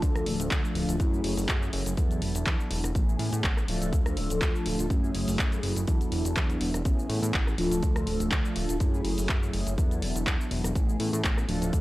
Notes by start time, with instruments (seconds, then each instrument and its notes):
Already playing: analog polysynth F3 A3 D4 F4 A4
0.02 analog synth bass D2, kick, closed hi-hat, shaker
0.16 cross-stick, closed hi-hat, shaker
0.26 analog synth bass D1, open hi-hat
0.40 analog synth bass D1, closed hi-hat, shaker
0.51 analog synth bass D2, kick, clap, closed hi-hat, shaker
0.65 shaker
0.75 analog synth bass D1, open hi-hat
0.88 analog synth bass D1, closed hi-hat, shaker
0.99 analog synth bass F#2, analog polysynth F#3 A3 C#4 E4 G#4, kick, closed hi-hat, shaker
1.14 shaker
1.24 analog synth bass F#1, open hi-hat
1.37 analog synth bass F#1, open hi-hat, shaker
1.48 analog synth bass F#2, kick, clap, closed hi-hat, shaker
1.62 shaker
1.73 analog synth bass F#1, open hi-hat
1.86 analog synth bass F#1, closed hi-hat, shaker
1.97 analog synth bass E2, analog polysynth F#3 B3 D4 E4 A4, kick, closed hi-hat, shaker
2.11 closed hi-hat, shaker
2.22 analog synth bass E1, open hi-hat
2.35 analog synth bass E1, closed hi-hat, shaker
2.46 analog synth bass E2, kick, clap, closed hi-hat, shaker
2.60 shaker
2.70 analog synth bass E1, open hi-hat
2.84 analog synth bass E1, cross-stick, closed hi-hat, shaker
2.94 analog synth bass A1, analog polysynth E3 A3 B3 C#4 G#4, kick, closed hi-hat, shaker
3.09 shaker
3.19 analog synth bass A2, open hi-hat
3.33 analog synth bass A2, closed hi-hat, shaker
3.44 analog synth bass A1, kick, clap, closed hi-hat, shaker
3.57 cross-stick, shaker
3.67 analog synth bass D1, analog polysynth F3 A3 D4 F4 A4, open hi-hat
3.81 analog synth bass D1, closed hi-hat, shaker
3.93 analog synth bass D2, kick, closed hi-hat, shaker
4.06 cross-stick, closed hi-hat, shaker
4.17 analog synth bass D1, open hi-hat
4.30 analog synth bass D1, closed hi-hat, shaker
4.41 analog synth bass D2, kick, clap, closed hi-hat, shaker
4.55 shaker
4.66 analog synth bass D1, open hi-hat
4.79 analog synth bass D1, closed hi-hat, shaker
4.89 analog synth bass F#2, analog polysynth F#3 A3 C#4 E4 G#4, kick, closed hi-hat, shaker
5.04 shaker
5.15 analog synth bass F#1, open hi-hat
5.28 analog synth bass F#1, open hi-hat, shaker
5.39 analog synth bass F#2, kick, clap, closed hi-hat, shaker
5.52 closed hi-hat, shaker
5.63 analog synth bass F#1, open hi-hat
5.76 analog synth bass F#1, closed hi-hat, shaker
5.87 analog synth bass E2, analog polysynth F#3 B3 D4 E4 A4, kick, closed hi-hat, shaker
6.01 analog synth bass E1, closed hi-hat, shaker
6.12 analog synth bass E1, open hi-hat
6.25 analog synth bass E1, closed hi-hat, shaker
6.36 analog synth bass E2, kick, clap, closed hi-hat, shaker
6.50 closed hi-hat, shaker
6.61 analog synth bass E1, open hi-hat
6.74 analog synth bass E1, cross-stick, closed hi-hat, shaker
6.85 analog synth bass A1, analog polysynth E3 A3 B3 C#4 G#4, kick, closed hi-hat, shaker
6.99 shaker
7.09 analog synth bass A2, open hi-hat
7.23 analog synth bass A2, closed hi-hat, shaker
7.34 analog synth bass A1, kick, clap, closed hi-hat, shaker
7.47 cross-stick, shaker
7.58 analog synth bass D1, analog polysynth F3 A3 D4 F4 A4, open hi-hat
7.71 analog synth bass D1, closed hi-hat, shaker
7.83 analog synth bass D2, kick, closed hi-hat, shaker
7.96 cross-stick, closed hi-hat, shaker
8.07 analog synth bass D1, open hi-hat
8.20 analog synth bass D1, closed hi-hat, shaker
8.31 analog synth bass D2, kick, clap, closed hi-hat, shaker
8.45 shaker
8.56 analog synth bass D1, open hi-hat
8.69 analog synth bass D1, closed hi-hat, shaker
8.80 analog synth bass F#2, analog polysynth F#3 A3 C#4 E4 G#4, kick, closed hi-hat, shaker
8.94 shaker
9.05 analog synth bass F#1, open hi-hat
9.18 analog synth bass F#1, open hi-hat, shaker
9.29 analog synth bass F#2, kick, clap, closed hi-hat, shaker
9.43 shaker
9.53 analog synth bass F#1, open hi-hat
9.67 analog synth bass F#1, closed hi-hat, shaker
9.77 analog synth bass E2, analog polysynth F#3 B3 D4 E4 A4, kick, closed hi-hat, shaker
9.91 closed hi-hat, shaker
10.02 analog synth bass E1, open hi-hat
10.15 analog synth bass E1, closed hi-hat, shaker
10.27 analog synth bass E2, kick, clap, closed hi-hat, shaker
10.41 shaker
10.51 analog synth bass E1, open hi-hat
10.64 analog synth bass E1, cross-stick, closed hi-hat, shaker
10.75 analog synth bass A1, analog polysynth E3 A3 B3 C#4 G#4, kick, closed hi-hat, shaker
10.89 shaker
11.00 analog synth bass A2, open hi-hat
11.13 analog synth bass A2, closed hi-hat, shaker
11.24 analog synth bass A1, kick, clap, closed hi-hat, shaker
11.38 cross-stick, shaker
11.48 analog synth bass D1, analog polysynth F3 A3 D4 F4 A4, open hi-hat
11.62 analog synth bass D1, closed hi-hat, shaker
11.73 analog synth bass D2, kick, closed hi-hat, shaker